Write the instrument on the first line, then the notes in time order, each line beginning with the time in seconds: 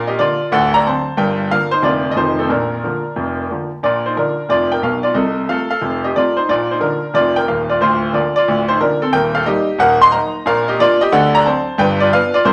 grand piano
Already playing: A#1 A#2 A#4 F5
0.07 G4 D#5
0.19 D3 F3 A#3 F4 D5
0.51 D1 D2 A4 F#5
0.74 D5 A#5
0.86 D3 F#3 C4 C5 A5
1.17 G1 G2 A#4 G5
1.50 D3 F3 A#3 A#4 F5
1.71 D#4 C5
1.82 F1 F2 D3 F3 A#3 F4 D5
2.11 D#5
2.16 F1 F2 D#3 F3 A3 D#4 C5
2.39 C4 A4
2.49 A#1 A#2 D4 A#4
2.84 D3 F3 A#3
3.16 F1 F2
3.50 D3 F3 A#3
3.83 A#1 A#2 F4 D5
4.06 D#4 C5
4.17 D3 F3 A#3 D4 A#4
4.49 F1 F2 F4 D5
4.72 A#4 G5
4.82 B1 B2 A#4 F5
5.03 F4 D5
5.14 C2 C3 A4 D#5
5.49 C3 F3 A3 A4 F5
5.71 A4 F5
5.81 F1 F2
6.04 G4 D#5
6.15 C3 F3 A3 F4 D5
6.37 D#4 C5
6.49 A#1 A#2 F4 D5
6.71 D#4 C5
6.81 D3 F3 A#3 D4 A#4
7.14 F1 F2 F4 D5
7.36 A#4 G5
7.47 D#1 D#2 A#4 F5
7.70 F4 D5
7.80 D1 D2 F4 C5
8.13 D3 F3 A#3 F4 D5
8.36 F4 D5
8.48 D1 D2
8.68 D#4 C5
8.80 D3 F3 A#3 D4 A#4
9.02 C4 A4
9.12 D#1 D#2 A#4 G5
9.35 A4 F5
9.45 G3 A#3 D#4 G4 D#5
9.79 D#1 D#2 A#4 F#5
10.02 D#5 C6
10.12 F#3 A#3 D#4 D#5 A#5
10.46 A#1 A#2 A#4 F5
10.68 G4 D#5
10.79 F3 A#3 D4 F4 D5
11.01 G4 D#5
11.12 D2 D3 A4 F#5
11.35 D5 A#5
11.45 F#3 C4 D4 C5 A5
11.78 G1 G2 B4 G5
12.00 F4 D5
12.12 F3 B3 D4 B4 F5
12.34 F4 D5
12.45 C2 C3 E3 A#3 C4 E4 C5